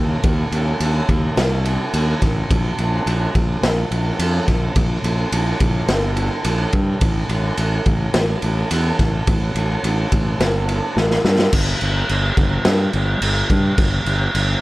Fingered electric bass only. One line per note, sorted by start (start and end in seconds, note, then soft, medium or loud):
0.00 0.15 D#2 loud
0.24 0.44 D#2 medium
0.52 0.71 D#2 medium
0.80 1.00 D#2 medium
1.09 1.28 D#2 medium
1.37 1.76 C2 medium
1.93 2.13 D#2 medium
2.22 2.42 A1 medium
2.51 2.70 A#1 medium
2.79 2.98 A#1 medium
3.06 3.26 A#1 medium
3.35 3.55 A#1 medium
3.63 3.82 A#1 medium
3.91 4.11 A#1 medium
4.19 4.39 F2 medium
4.48 4.67 A#1 medium
4.76 4.96 A#1 medium
5.04 5.24 A#1 medium
5.32 5.52 A#1 medium
5.61 5.80 A#1 medium
5.88 6.28 G1 medium
6.45 6.64 A#1 medium
6.73 6.93 G2 loud
7.01 7.21 A1 loud
7.29 7.49 A1 medium
7.58 7.77 A1 medium
7.86 8.06 A1 medium
8.14 8.34 A1 medium
8.43 8.62 A1 medium
8.71 8.91 E2 medium
8.99 9.19 A1 medium
9.28 9.47 A1 medium
9.55 9.75 A1 medium
9.83 10.03 A1 medium
10.12 10.32 A1 medium
10.40 10.79 G1 medium
10.96 11.16 A1 medium
11.24 11.44 G2 medium
11.53 11.73 G1 medium
11.82 12.02 G1 medium
12.10 12.30 G1 medium
12.37 12.57 G1 medium
12.65 12.86 G2 medium
12.94 13.14 G1 medium
13.21 13.42 G1 medium
13.50 13.70 G2 loud
13.78 13.98 G1 loud
14.06 14.26 G1 medium
14.35 14.55 G1 medium